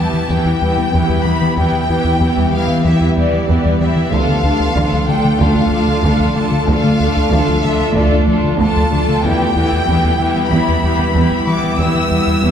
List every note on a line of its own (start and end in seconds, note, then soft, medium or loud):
0.00 0.20 E2 medium
0.00 0.30 E3 soft
0.00 4.08 E3 medium
0.00 0.29 B3 soft
0.00 4.08 B3 medium
0.00 0.29 E4 soft
0.00 0.29 G4 soft
0.00 4.08 G4 medium
0.00 4.08 B4 medium
0.00 0.30 A5 medium
0.14 0.23 E3 medium
0.14 0.24 B3 medium
0.30 0.40 E2 medium
0.30 0.84 E2 medium
0.30 0.39 E3 medium
0.30 0.61 E3 soft
0.30 0.61 B3 soft
0.30 0.61 E4 soft
0.30 0.61 G4 soft
0.30 1.26 G5 medium
0.46 0.55 E2 medium
0.46 0.56 E4 soft
0.62 0.71 E2 medium
0.62 0.93 E3 soft
0.62 0.72 G3 medium
0.62 0.93 B3 soft
0.62 0.92 E4 soft
0.62 0.93 G4 soft
0.78 0.87 E3 medium
0.78 0.88 B3 soft
0.94 1.04 E2 medium
0.94 1.48 E2 medium
0.94 1.04 E3 medium
0.94 1.24 E3 soft
0.94 1.24 B3 soft
0.94 1.25 E4 soft
0.94 1.25 G4 soft
1.09 1.19 E2 soft
1.09 1.19 G3 medium
1.25 1.35 E3 soft
1.25 1.56 E3 soft
1.25 1.56 B3 soft
1.25 1.36 B3 medium
1.25 1.56 E4 soft
1.25 1.57 G4 soft
1.25 1.57 B5 medium
1.41 1.51 E3 medium
1.41 1.52 B3 medium
1.57 1.67 E2 medium
1.57 2.11 E2 medium
1.57 1.87 E3 soft
1.57 1.67 E3 medium
1.57 1.87 B3 soft
1.57 1.89 E4 soft
1.57 1.89 G4 soft
1.57 2.52 G5 medium
1.73 1.83 E3 medium
1.73 1.83 B3 soft
1.88 1.99 E2 soft
1.88 2.19 E3 soft
1.88 2.20 B3 soft
1.88 1.99 E4 medium
1.88 2.21 E4 soft
1.88 2.21 G4 soft
2.05 2.14 E2 medium
2.05 2.15 E4 medium
2.20 2.31 E2 medium
2.20 2.75 E2 medium
2.20 2.52 E3 soft
2.20 2.31 E3 medium
2.20 2.52 B3 soft
2.20 2.51 E4 soft
2.20 2.51 G4 soft
2.37 2.47 E2 medium
2.37 2.47 G3 medium
2.52 2.62 E3 medium
2.52 2.84 E3 soft
2.52 2.63 B3 medium
2.52 2.84 B3 soft
2.52 2.83 E4 soft
2.52 2.83 G4 soft
2.52 2.85 F5 medium
2.68 2.78 E3 medium
2.68 2.79 B3 medium
2.85 2.94 E2 medium
2.85 3.39 E2 medium
2.85 2.95 E3 medium
2.85 3.16 E3 soft
2.85 3.16 B3 soft
2.85 3.15 E4 soft
2.85 3.16 G4 soft
2.85 3.16 E5 medium
3.01 3.11 E2 medium
3.01 3.11 E4 soft
3.16 3.27 E2 soft
3.16 3.48 E3 soft
3.16 3.27 G3 medium
3.16 3.48 B3 soft
3.16 3.48 E4 soft
3.16 3.48 G4 soft
3.16 3.80 D5 medium
3.33 3.43 E3 medium
3.33 3.43 B3 medium
3.49 3.59 E2 medium
3.49 4.03 E2 medium
3.49 3.58 E3 medium
3.49 3.79 E3 soft
3.49 3.79 B3 soft
3.49 3.80 E4 soft
3.49 3.81 G4 soft
3.65 3.75 E2 medium
3.65 3.75 G3 medium
3.80 4.12 E3 soft
3.80 3.91 E3 medium
3.80 4.12 B3 soft
3.80 3.91 B3 soft
3.80 4.13 E4 soft
3.80 4.13 G4 soft
3.80 4.14 E5 medium
3.96 4.06 E3 soft
3.96 4.07 B3 medium
4.11 4.22 D2 medium
4.11 4.66 D2 medium
4.11 4.23 D3 medium
4.11 9.23 A3 medium
4.11 4.44 A3 soft
4.11 4.44 D4 soft
4.11 9.23 F4 medium
4.11 4.43 F4 medium
4.11 9.23 A4 medium
4.11 4.44 A4 medium
4.11 9.23 D5 medium
4.11 5.09 F5 medium
4.28 4.38 D3 medium
4.28 4.39 A3 medium
4.43 4.53 D2 medium
4.43 4.75 A3 soft
4.43 4.54 D4 medium
4.43 4.75 D4 soft
4.43 4.76 F4 soft
4.43 4.76 A4 soft
4.60 4.70 D2 medium
4.60 4.71 D4 medium
4.75 4.85 D2 medium
4.75 5.30 D2 medium
4.75 4.87 D3 medium
4.75 5.08 A3 soft
4.75 5.08 D4 soft
4.75 5.07 F4 soft
4.75 5.08 A4 soft
4.93 5.02 D2 medium
4.93 5.03 F3 medium
5.08 5.18 D3 medium
5.08 5.18 A3 medium
5.08 5.40 A3 soft
5.08 5.40 D4 soft
5.08 5.40 F4 soft
5.08 5.40 A4 soft
5.08 5.40 G5 medium
5.25 5.34 D3 medium
5.25 5.35 A3 medium
5.40 5.50 D2 medium
5.40 5.94 D2 medium
5.40 5.51 D3 medium
5.40 5.70 A3 medium
5.40 5.70 D4 soft
5.40 5.72 F4 medium
5.40 5.72 A4 medium
5.40 6.37 F5 medium
5.56 5.65 D2 medium
5.56 5.66 D4 soft
5.71 5.81 D2 medium
5.71 5.83 F3 medium
5.71 6.03 A3 soft
5.71 6.03 D4 soft
5.71 6.04 F4 soft
5.71 6.04 A4 soft
5.88 5.98 D3 medium
5.88 5.99 A3 medium
6.04 6.58 D2 medium
6.04 6.14 D2 medium
6.04 6.14 D3 medium
6.04 6.35 A3 soft
6.04 6.34 D4 soft
6.04 6.36 F4 soft
6.04 6.36 A4 soft
6.20 6.30 D2 medium
6.20 6.30 F3 medium
6.35 6.45 D3 medium
6.35 6.67 A3 soft
6.35 6.46 A3 medium
6.35 6.67 D4 soft
6.35 6.68 F4 soft
6.35 6.68 A4 soft
6.35 6.68 A5 medium
6.51 6.61 D3 soft
6.51 6.61 A3 medium
6.67 6.78 D2 medium
6.67 7.22 D2 medium
6.67 6.77 D3 medium
6.67 6.99 A3 medium
6.67 6.99 D4 medium
6.67 7.01 F4 medium
6.67 7.01 A4 soft
6.67 7.62 F5 medium
6.84 6.93 D3 medium
6.84 6.94 A3 soft
7.00 7.10 D2 medium
7.00 7.31 A3 soft
7.00 7.10 D4 medium
7.00 7.31 D4 medium
7.00 7.31 F4 medium
7.00 7.31 A4 soft
7.16 7.26 D2 medium
7.16 7.26 D4 medium
7.32 7.42 D2 medium
7.32 7.86 D2 medium
7.32 7.42 D3 medium
7.32 7.63 A3 soft
7.32 7.64 D4 soft
7.32 7.63 F4 medium
7.32 7.63 A4 medium
7.48 7.58 D2 medium
7.48 7.57 F3 medium
7.64 7.74 D3 medium
7.64 7.74 A3 medium
7.64 7.95 A3 soft
7.64 7.95 D4 medium
7.64 7.96 F4 medium
7.64 7.96 A4 soft
7.64 7.96 E5 medium
7.80 7.90 D3 medium
7.80 7.90 A3 medium
7.96 8.05 D2 medium
7.96 8.49 D2 medium
7.96 8.05 D3 medium
7.96 8.28 A3 medium
7.96 8.28 D4 medium
7.96 8.28 F4 medium
7.96 8.28 A4 medium
7.96 8.27 D5 medium
8.12 8.22 D2 medium
8.12 8.22 D4 soft
8.27 8.38 D2 medium
8.27 8.37 F3 medium
8.27 8.59 A3 soft
8.27 8.59 D4 soft
8.27 8.60 F4 soft
8.27 8.60 A4 soft
8.43 8.54 D3 medium
8.43 8.53 A3 medium
8.60 9.13 D2 medium
8.60 8.70 D2 medium
8.60 8.69 D3 medium
8.60 8.91 A3 medium
8.60 8.90 D4 soft
8.60 8.92 F4 medium
8.60 8.92 A4 medium
8.60 9.20 A5 medium
8.75 8.86 D2 medium
8.75 8.85 F3 medium
8.91 9.02 D3 medium
8.91 9.01 A3 soft
8.91 9.23 A3 soft
8.91 9.23 D4 soft
8.91 9.24 F4 soft
8.91 9.24 A4 soft
9.08 9.18 D3 medium
9.08 9.17 A3 soft
9.23 9.77 E2 medium
9.23 9.34 E2 medium
9.23 9.55 E3 medium
9.23 9.33 E3 medium
9.23 12.51 G3 medium
9.23 9.55 B3 medium
9.23 12.51 E4 medium
9.23 9.56 E4 medium
9.23 9.56 G4 medium
9.23 12.51 B4 medium
9.23 12.51 E5 medium
9.23 10.51 G5 medium
9.40 9.50 E3 medium
9.40 9.50 B3 medium
9.56 9.66 E2 soft
9.56 9.87 E3 soft
9.56 9.87 B3 medium
9.56 9.66 E4 medium
9.56 9.87 E4 soft
9.56 9.87 G4 soft
9.73 9.82 E2 medium
9.73 9.82 E4 medium
9.88 10.41 E2 medium
9.88 9.98 E2 medium
9.88 9.97 E3 medium
9.88 10.18 E3 medium
9.88 10.18 B3 medium
9.88 10.19 E4 medium
9.88 10.19 G4 medium
10.04 10.14 E2 medium
10.04 10.14 G3 medium
10.19 10.50 E3 soft
10.19 10.29 E3 medium
10.19 10.50 B3 soft
10.19 10.30 B3 medium
10.19 10.50 E4 soft
10.19 10.50 G4 soft
10.36 10.45 E3 medium
10.36 10.45 B3 medium
10.51 11.05 E2 medium
10.51 10.61 E2 medium
10.51 10.61 E3 medium
10.51 10.82 E3 medium
10.51 10.82 B3 medium
10.51 10.83 E4 medium
10.51 10.82 G4 soft
10.51 11.47 B5 medium
10.68 10.78 E2 medium
10.68 10.77 E4 soft
10.83 10.93 E2 medium
10.83 11.14 E3 soft
10.83 10.93 G3 medium
10.83 11.14 B3 soft
10.83 11.15 E4 soft
10.83 11.14 G4 soft
10.99 11.09 E3 medium
10.99 11.09 B3 medium
11.15 11.25 E2 medium
11.15 11.69 E2 medium
11.15 11.25 E3 medium
11.15 11.47 E3 soft
11.15 11.46 B3 soft
11.15 11.46 E4 soft
11.15 11.46 G4 soft
11.31 11.41 E2 medium
11.31 11.41 G3 soft
11.47 11.57 E3 medium
11.47 11.78 E3 soft
11.47 11.57 B3 soft
11.47 11.78 B3 soft
11.47 11.78 E4 soft
11.47 11.78 G4 soft
11.47 11.79 D6 medium
11.63 11.73 E3 soft
11.63 11.73 B3 medium
11.79 11.88 E2 medium
11.79 12.33 E2 medium
11.79 11.89 E3 medium
11.79 12.09 E3 soft
11.79 12.09 B3 soft
11.79 12.09 E4 medium
11.79 12.10 G4 medium
11.79 12.51 E6 medium
11.94 12.05 E3 medium
11.94 12.04 B3 medium
12.10 12.21 E2 soft
12.10 12.42 E3 soft
12.10 12.41 B3 soft
12.10 12.42 E4 soft
12.10 12.20 E4 medium
12.10 12.42 G4 soft
12.27 12.37 E2 medium
12.27 12.36 E4 medium
12.42 12.51 E2 medium
12.42 12.51 E3 medium
12.42 12.51 E3 soft
12.42 12.51 B3 soft
12.42 12.51 E4 soft
12.42 12.51 G4 soft